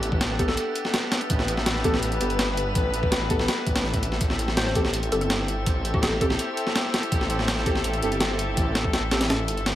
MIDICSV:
0, 0, Header, 1, 7, 480
1, 0, Start_track
1, 0, Key_signature, 0, "minor"
1, 0, Tempo, 363636
1, 1719, Time_signature, 4, 2, 24, 8
1, 12871, End_track
2, 0, Start_track
2, 0, Title_t, "Synth texture"
2, 0, Program_c, 0, 99
2, 0, Note_on_c, 0, 76, 86
2, 5536, Note_off_c, 0, 76, 0
2, 5552, Note_on_c, 0, 76, 84
2, 12871, Note_off_c, 0, 76, 0
2, 12871, End_track
3, 0, Start_track
3, 0, Title_t, "Synth pluck"
3, 0, Program_c, 1, 84
3, 0, Note_on_c, 1, 67, 99
3, 203, Note_off_c, 1, 67, 0
3, 633, Note_on_c, 1, 69, 98
3, 1308, Note_off_c, 1, 69, 0
3, 6038, Note_on_c, 1, 72, 83
3, 6116, Note_off_c, 1, 72, 0
3, 6163, Note_on_c, 1, 72, 76
3, 6237, Note_off_c, 1, 72, 0
3, 6761, Note_on_c, 1, 69, 92
3, 6838, Note_off_c, 1, 69, 0
3, 6883, Note_on_c, 1, 69, 78
3, 6957, Note_off_c, 1, 69, 0
3, 7838, Note_on_c, 1, 67, 91
3, 7934, Note_off_c, 1, 67, 0
3, 7949, Note_on_c, 1, 69, 93
3, 8626, Note_off_c, 1, 69, 0
3, 12871, End_track
4, 0, Start_track
4, 0, Title_t, "String section"
4, 0, Program_c, 2, 48
4, 0, Note_on_c, 2, 59, 86
4, 0, Note_on_c, 2, 62, 79
4, 0, Note_on_c, 2, 67, 78
4, 0, Note_on_c, 2, 69, 92
4, 1667, Note_off_c, 2, 69, 0
4, 1714, Note_on_c, 2, 71, 99
4, 5506, Note_off_c, 2, 62, 0
4, 5507, Note_off_c, 2, 59, 0
4, 5507, Note_off_c, 2, 67, 0
4, 5518, Note_off_c, 2, 71, 0
4, 5554, Note_on_c, 2, 64, 80
4, 5556, Note_on_c, 2, 60, 84
4, 5556, Note_on_c, 2, 69, 100
4, 5559, Note_on_c, 2, 67, 83
4, 12871, Note_off_c, 2, 60, 0
4, 12871, Note_off_c, 2, 64, 0
4, 12871, Note_off_c, 2, 67, 0
4, 12871, Note_off_c, 2, 69, 0
4, 12871, End_track
5, 0, Start_track
5, 0, Title_t, "Synth stab"
5, 0, Program_c, 3, 62
5, 0, Note_on_c, 3, 59, 77
5, 0, Note_on_c, 3, 67, 71
5, 0, Note_on_c, 3, 69, 86
5, 489, Note_off_c, 3, 59, 0
5, 489, Note_off_c, 3, 69, 0
5, 490, Note_off_c, 3, 67, 0
5, 515, Note_on_c, 3, 59, 92
5, 517, Note_on_c, 3, 67, 88
5, 517, Note_on_c, 3, 69, 106
5, 586, Note_off_c, 3, 59, 0
5, 586, Note_off_c, 3, 69, 0
5, 587, Note_off_c, 3, 67, 0
5, 2435, Note_on_c, 3, 67, 89
5, 2436, Note_on_c, 3, 59, 95
5, 2436, Note_on_c, 3, 69, 105
5, 2547, Note_off_c, 3, 59, 0
5, 2547, Note_off_c, 3, 67, 0
5, 2547, Note_off_c, 3, 69, 0
5, 2917, Note_on_c, 3, 67, 74
5, 2918, Note_on_c, 3, 59, 81
5, 2918, Note_on_c, 3, 69, 89
5, 4329, Note_off_c, 3, 67, 0
5, 4330, Note_off_c, 3, 59, 0
5, 4330, Note_off_c, 3, 69, 0
5, 4358, Note_on_c, 3, 69, 101
5, 4359, Note_on_c, 3, 59, 92
5, 4360, Note_on_c, 3, 67, 85
5, 4427, Note_off_c, 3, 69, 0
5, 4428, Note_off_c, 3, 59, 0
5, 4428, Note_off_c, 3, 67, 0
5, 6277, Note_on_c, 3, 67, 88
5, 6278, Note_on_c, 3, 60, 94
5, 6279, Note_on_c, 3, 69, 102
5, 6388, Note_off_c, 3, 60, 0
5, 6388, Note_off_c, 3, 67, 0
5, 6389, Note_off_c, 3, 69, 0
5, 6759, Note_on_c, 3, 69, 86
5, 6760, Note_on_c, 3, 60, 81
5, 6760, Note_on_c, 3, 67, 75
5, 8170, Note_off_c, 3, 69, 0
5, 8171, Note_off_c, 3, 60, 0
5, 8171, Note_off_c, 3, 67, 0
5, 8197, Note_on_c, 3, 69, 101
5, 8198, Note_on_c, 3, 67, 86
5, 8199, Note_on_c, 3, 60, 93
5, 8267, Note_off_c, 3, 67, 0
5, 8267, Note_off_c, 3, 69, 0
5, 8268, Note_off_c, 3, 60, 0
5, 10116, Note_on_c, 3, 60, 93
5, 10116, Note_on_c, 3, 67, 85
5, 10116, Note_on_c, 3, 69, 103
5, 10228, Note_off_c, 3, 60, 0
5, 10228, Note_off_c, 3, 67, 0
5, 10228, Note_off_c, 3, 69, 0
5, 10596, Note_on_c, 3, 69, 86
5, 10597, Note_on_c, 3, 60, 81
5, 10597, Note_on_c, 3, 67, 75
5, 12009, Note_off_c, 3, 60, 0
5, 12009, Note_off_c, 3, 67, 0
5, 12009, Note_off_c, 3, 69, 0
5, 12034, Note_on_c, 3, 67, 88
5, 12034, Note_on_c, 3, 69, 103
5, 12035, Note_on_c, 3, 60, 93
5, 12105, Note_off_c, 3, 60, 0
5, 12105, Note_off_c, 3, 67, 0
5, 12105, Note_off_c, 3, 69, 0
5, 12871, End_track
6, 0, Start_track
6, 0, Title_t, "Detuned saw bass"
6, 0, Program_c, 4, 39
6, 0, Note_on_c, 4, 33, 101
6, 739, Note_off_c, 4, 33, 0
6, 1717, Note_on_c, 4, 33, 101
6, 2659, Note_off_c, 4, 33, 0
6, 2680, Note_on_c, 4, 33, 101
6, 2896, Note_off_c, 4, 33, 0
6, 2919, Note_on_c, 4, 31, 87
6, 3620, Note_off_c, 4, 31, 0
6, 3638, Note_on_c, 4, 33, 102
6, 4579, Note_off_c, 4, 33, 0
6, 4839, Note_on_c, 4, 33, 94
6, 5540, Note_off_c, 4, 33, 0
6, 5557, Note_on_c, 4, 33, 101
6, 6499, Note_off_c, 4, 33, 0
6, 6518, Note_on_c, 4, 33, 102
6, 6735, Note_off_c, 4, 33, 0
6, 6764, Note_on_c, 4, 31, 89
6, 7462, Note_off_c, 4, 31, 0
6, 7479, Note_on_c, 4, 33, 101
6, 8420, Note_off_c, 4, 33, 0
6, 9397, Note_on_c, 4, 33, 98
6, 10339, Note_off_c, 4, 33, 0
6, 10359, Note_on_c, 4, 33, 102
6, 10575, Note_off_c, 4, 33, 0
6, 10599, Note_on_c, 4, 31, 86
6, 11300, Note_off_c, 4, 31, 0
6, 11315, Note_on_c, 4, 33, 105
6, 12521, Note_on_c, 4, 31, 92
6, 12541, Note_off_c, 4, 33, 0
6, 12871, Note_off_c, 4, 31, 0
6, 12871, End_track
7, 0, Start_track
7, 0, Title_t, "Drums"
7, 37, Note_on_c, 9, 42, 69
7, 158, Note_on_c, 9, 36, 101
7, 169, Note_off_c, 9, 42, 0
7, 276, Note_on_c, 9, 38, 119
7, 276, Note_on_c, 9, 42, 87
7, 290, Note_off_c, 9, 36, 0
7, 408, Note_off_c, 9, 38, 0
7, 408, Note_off_c, 9, 42, 0
7, 518, Note_on_c, 9, 36, 94
7, 518, Note_on_c, 9, 42, 67
7, 640, Note_on_c, 9, 38, 55
7, 650, Note_off_c, 9, 36, 0
7, 650, Note_off_c, 9, 42, 0
7, 756, Note_on_c, 9, 42, 90
7, 772, Note_off_c, 9, 38, 0
7, 888, Note_off_c, 9, 42, 0
7, 996, Note_on_c, 9, 42, 70
7, 1120, Note_on_c, 9, 38, 49
7, 1128, Note_off_c, 9, 42, 0
7, 1236, Note_off_c, 9, 38, 0
7, 1236, Note_on_c, 9, 38, 116
7, 1236, Note_on_c, 9, 42, 86
7, 1368, Note_off_c, 9, 38, 0
7, 1368, Note_off_c, 9, 42, 0
7, 1474, Note_on_c, 9, 38, 105
7, 1474, Note_on_c, 9, 42, 77
7, 1599, Note_off_c, 9, 42, 0
7, 1599, Note_on_c, 9, 42, 44
7, 1606, Note_off_c, 9, 38, 0
7, 1714, Note_off_c, 9, 42, 0
7, 1714, Note_on_c, 9, 42, 94
7, 1716, Note_on_c, 9, 36, 113
7, 1836, Note_on_c, 9, 38, 46
7, 1846, Note_off_c, 9, 42, 0
7, 1848, Note_off_c, 9, 36, 0
7, 1956, Note_on_c, 9, 42, 70
7, 1968, Note_off_c, 9, 38, 0
7, 2077, Note_on_c, 9, 38, 48
7, 2088, Note_off_c, 9, 42, 0
7, 2194, Note_off_c, 9, 38, 0
7, 2194, Note_on_c, 9, 38, 113
7, 2194, Note_on_c, 9, 42, 91
7, 2316, Note_off_c, 9, 38, 0
7, 2316, Note_on_c, 9, 38, 40
7, 2326, Note_off_c, 9, 42, 0
7, 2434, Note_on_c, 9, 42, 70
7, 2436, Note_on_c, 9, 36, 97
7, 2448, Note_off_c, 9, 38, 0
7, 2558, Note_on_c, 9, 38, 51
7, 2566, Note_off_c, 9, 42, 0
7, 2568, Note_off_c, 9, 36, 0
7, 2675, Note_on_c, 9, 42, 87
7, 2690, Note_off_c, 9, 38, 0
7, 2796, Note_off_c, 9, 42, 0
7, 2796, Note_on_c, 9, 42, 44
7, 2913, Note_off_c, 9, 42, 0
7, 2913, Note_on_c, 9, 42, 67
7, 3037, Note_off_c, 9, 42, 0
7, 3037, Note_on_c, 9, 42, 44
7, 3155, Note_off_c, 9, 42, 0
7, 3155, Note_on_c, 9, 38, 112
7, 3155, Note_on_c, 9, 42, 88
7, 3287, Note_off_c, 9, 38, 0
7, 3287, Note_off_c, 9, 42, 0
7, 3397, Note_on_c, 9, 42, 69
7, 3529, Note_off_c, 9, 42, 0
7, 3634, Note_on_c, 9, 42, 89
7, 3636, Note_on_c, 9, 36, 113
7, 3766, Note_off_c, 9, 42, 0
7, 3768, Note_off_c, 9, 36, 0
7, 3876, Note_on_c, 9, 42, 72
7, 3999, Note_on_c, 9, 36, 92
7, 4008, Note_off_c, 9, 42, 0
7, 4116, Note_on_c, 9, 38, 116
7, 4116, Note_on_c, 9, 42, 92
7, 4131, Note_off_c, 9, 36, 0
7, 4248, Note_off_c, 9, 38, 0
7, 4248, Note_off_c, 9, 42, 0
7, 4356, Note_on_c, 9, 42, 67
7, 4358, Note_on_c, 9, 36, 92
7, 4479, Note_on_c, 9, 38, 55
7, 4488, Note_off_c, 9, 42, 0
7, 4490, Note_off_c, 9, 36, 0
7, 4599, Note_off_c, 9, 38, 0
7, 4599, Note_on_c, 9, 38, 101
7, 4599, Note_on_c, 9, 42, 78
7, 4731, Note_off_c, 9, 38, 0
7, 4731, Note_off_c, 9, 42, 0
7, 4838, Note_on_c, 9, 36, 87
7, 4838, Note_on_c, 9, 42, 62
7, 4958, Note_off_c, 9, 42, 0
7, 4958, Note_on_c, 9, 38, 102
7, 4958, Note_on_c, 9, 42, 80
7, 4970, Note_off_c, 9, 36, 0
7, 5076, Note_off_c, 9, 38, 0
7, 5076, Note_on_c, 9, 38, 37
7, 5090, Note_off_c, 9, 42, 0
7, 5195, Note_on_c, 9, 42, 64
7, 5198, Note_on_c, 9, 36, 86
7, 5208, Note_off_c, 9, 38, 0
7, 5317, Note_off_c, 9, 42, 0
7, 5317, Note_on_c, 9, 42, 62
7, 5330, Note_off_c, 9, 36, 0
7, 5436, Note_on_c, 9, 38, 44
7, 5449, Note_off_c, 9, 42, 0
7, 5553, Note_on_c, 9, 42, 92
7, 5557, Note_on_c, 9, 36, 109
7, 5568, Note_off_c, 9, 38, 0
7, 5676, Note_on_c, 9, 38, 49
7, 5685, Note_off_c, 9, 42, 0
7, 5689, Note_off_c, 9, 36, 0
7, 5796, Note_on_c, 9, 42, 71
7, 5808, Note_off_c, 9, 38, 0
7, 5914, Note_on_c, 9, 38, 48
7, 5928, Note_off_c, 9, 42, 0
7, 6033, Note_off_c, 9, 38, 0
7, 6033, Note_on_c, 9, 38, 117
7, 6033, Note_on_c, 9, 42, 89
7, 6159, Note_off_c, 9, 38, 0
7, 6159, Note_on_c, 9, 38, 40
7, 6165, Note_off_c, 9, 42, 0
7, 6276, Note_on_c, 9, 42, 69
7, 6278, Note_on_c, 9, 36, 96
7, 6291, Note_off_c, 9, 38, 0
7, 6398, Note_on_c, 9, 38, 51
7, 6408, Note_off_c, 9, 42, 0
7, 6410, Note_off_c, 9, 36, 0
7, 6515, Note_on_c, 9, 42, 89
7, 6530, Note_off_c, 9, 38, 0
7, 6639, Note_off_c, 9, 42, 0
7, 6639, Note_on_c, 9, 42, 44
7, 6758, Note_off_c, 9, 42, 0
7, 6758, Note_on_c, 9, 42, 69
7, 6882, Note_off_c, 9, 42, 0
7, 6882, Note_on_c, 9, 42, 44
7, 6997, Note_off_c, 9, 42, 0
7, 6997, Note_on_c, 9, 38, 112
7, 6997, Note_on_c, 9, 42, 92
7, 7129, Note_off_c, 9, 38, 0
7, 7129, Note_off_c, 9, 42, 0
7, 7238, Note_on_c, 9, 42, 67
7, 7370, Note_off_c, 9, 42, 0
7, 7477, Note_on_c, 9, 42, 92
7, 7479, Note_on_c, 9, 36, 115
7, 7609, Note_off_c, 9, 42, 0
7, 7611, Note_off_c, 9, 36, 0
7, 7720, Note_on_c, 9, 42, 68
7, 7840, Note_on_c, 9, 36, 101
7, 7852, Note_off_c, 9, 42, 0
7, 7957, Note_on_c, 9, 38, 116
7, 7957, Note_on_c, 9, 42, 90
7, 7972, Note_off_c, 9, 36, 0
7, 8089, Note_off_c, 9, 38, 0
7, 8089, Note_off_c, 9, 42, 0
7, 8198, Note_on_c, 9, 36, 94
7, 8198, Note_on_c, 9, 42, 66
7, 8319, Note_on_c, 9, 38, 56
7, 8330, Note_off_c, 9, 36, 0
7, 8330, Note_off_c, 9, 42, 0
7, 8436, Note_on_c, 9, 42, 88
7, 8451, Note_off_c, 9, 38, 0
7, 8568, Note_off_c, 9, 42, 0
7, 8676, Note_on_c, 9, 42, 69
7, 8800, Note_on_c, 9, 38, 50
7, 8808, Note_off_c, 9, 42, 0
7, 8918, Note_off_c, 9, 38, 0
7, 8918, Note_on_c, 9, 38, 123
7, 8918, Note_on_c, 9, 42, 89
7, 9050, Note_off_c, 9, 38, 0
7, 9050, Note_off_c, 9, 42, 0
7, 9159, Note_on_c, 9, 38, 109
7, 9159, Note_on_c, 9, 42, 81
7, 9281, Note_off_c, 9, 42, 0
7, 9281, Note_on_c, 9, 42, 45
7, 9291, Note_off_c, 9, 38, 0
7, 9397, Note_on_c, 9, 36, 114
7, 9398, Note_off_c, 9, 42, 0
7, 9398, Note_on_c, 9, 42, 94
7, 9519, Note_on_c, 9, 38, 46
7, 9529, Note_off_c, 9, 36, 0
7, 9530, Note_off_c, 9, 42, 0
7, 9634, Note_on_c, 9, 42, 70
7, 9651, Note_off_c, 9, 38, 0
7, 9757, Note_on_c, 9, 38, 49
7, 9766, Note_off_c, 9, 42, 0
7, 9875, Note_off_c, 9, 38, 0
7, 9875, Note_on_c, 9, 38, 118
7, 9875, Note_on_c, 9, 42, 88
7, 9997, Note_off_c, 9, 38, 0
7, 9997, Note_on_c, 9, 38, 41
7, 10007, Note_off_c, 9, 42, 0
7, 10113, Note_on_c, 9, 42, 69
7, 10115, Note_on_c, 9, 36, 95
7, 10129, Note_off_c, 9, 38, 0
7, 10236, Note_on_c, 9, 38, 54
7, 10245, Note_off_c, 9, 42, 0
7, 10247, Note_off_c, 9, 36, 0
7, 10352, Note_on_c, 9, 42, 90
7, 10368, Note_off_c, 9, 38, 0
7, 10474, Note_off_c, 9, 42, 0
7, 10474, Note_on_c, 9, 42, 44
7, 10593, Note_off_c, 9, 42, 0
7, 10593, Note_on_c, 9, 42, 73
7, 10716, Note_off_c, 9, 42, 0
7, 10716, Note_on_c, 9, 42, 45
7, 10830, Note_off_c, 9, 42, 0
7, 10830, Note_on_c, 9, 38, 112
7, 10830, Note_on_c, 9, 42, 89
7, 10962, Note_off_c, 9, 38, 0
7, 10962, Note_off_c, 9, 42, 0
7, 11074, Note_on_c, 9, 42, 71
7, 11206, Note_off_c, 9, 42, 0
7, 11314, Note_on_c, 9, 42, 96
7, 11315, Note_on_c, 9, 36, 114
7, 11446, Note_off_c, 9, 42, 0
7, 11447, Note_off_c, 9, 36, 0
7, 11553, Note_on_c, 9, 38, 109
7, 11553, Note_on_c, 9, 42, 78
7, 11677, Note_on_c, 9, 36, 100
7, 11685, Note_off_c, 9, 38, 0
7, 11685, Note_off_c, 9, 42, 0
7, 11794, Note_on_c, 9, 38, 109
7, 11794, Note_on_c, 9, 42, 78
7, 11809, Note_off_c, 9, 36, 0
7, 11926, Note_off_c, 9, 38, 0
7, 11926, Note_off_c, 9, 42, 0
7, 12031, Note_on_c, 9, 38, 106
7, 12031, Note_on_c, 9, 42, 78
7, 12155, Note_off_c, 9, 38, 0
7, 12155, Note_off_c, 9, 42, 0
7, 12155, Note_on_c, 9, 38, 108
7, 12155, Note_on_c, 9, 42, 83
7, 12276, Note_off_c, 9, 38, 0
7, 12276, Note_off_c, 9, 42, 0
7, 12276, Note_on_c, 9, 38, 108
7, 12276, Note_on_c, 9, 42, 81
7, 12408, Note_off_c, 9, 38, 0
7, 12408, Note_off_c, 9, 42, 0
7, 12515, Note_on_c, 9, 42, 77
7, 12638, Note_off_c, 9, 42, 0
7, 12638, Note_on_c, 9, 42, 39
7, 12754, Note_off_c, 9, 42, 0
7, 12754, Note_on_c, 9, 38, 109
7, 12754, Note_on_c, 9, 42, 78
7, 12871, Note_off_c, 9, 38, 0
7, 12871, Note_off_c, 9, 42, 0
7, 12871, End_track
0, 0, End_of_file